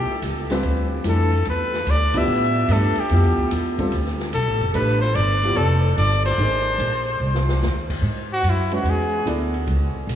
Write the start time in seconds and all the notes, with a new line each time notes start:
Already playing: G4
0.09 muted upright bass stroke
0.22 C#2, hi-hat pedal, ride
0.50 G3 C4 F4 B4, snare, ride
0.63 D2, ride
1.04 F2 E3 A3 D4 E4, hi-hat pedal, ride
1.09 A4
1.32 ride
1.45 E2, ride
1.50 B4
1.73 snare
1.86 D2 D5, hi-hat pedal, ride
2.14 F3 B3 E4 G4 E5, kick, ride
2.27 A2
2.68 G2 A3 D4 G4 B4, hi-hat pedal, ride
2.73 A4
2.96 muted upright bass stroke, ride
3.00 G4
3.09 F2 F3 B3 E4 G4, ride
3.24 E2
3.37 D2
3.51 E2, hi-hat pedal, ride
3.79 G3 C4 F4 A4, kick, ride
3.92 D2, ride
4.05 snare
4.19 snare
4.33 B1 A4, hi-hat pedal, ride
4.47 A1
4.61 F1, ride
4.74 A1 A3 D4 G4 B4, ride
4.88 snare
5.01 C5, snare
5.15 G1 D5, hi-hat pedal, ride
5.43 F3 B3 E4 G4, ride
5.56 F1 A4, ride
5.98 G1 D5, hi-hat pedal, ride
6.25 C5, snare, ride
6.38 G#1 A#3 D#4 G#4 C5, ride
6.78 A#1, hi-hat pedal, ride
7.20 C2
7.35 snare
7.49 snare
7.62 D#2, snare, hi-hat pedal
7.90 kick, crash
8.02 G#2
8.33 F#4
8.43 F#2, hi-hat pedal, ride
8.49 E4
8.71 G#3 C#4 F#4 B4, ride
8.83 E2, ride
8.90 G#4
9.25 D2 B3 E4 A4 D5, hi-hat pedal, ride
9.54 ride
9.67 C#2, ride
9.94 muted upright bass stroke
10.07 B1, hi-hat pedal, ride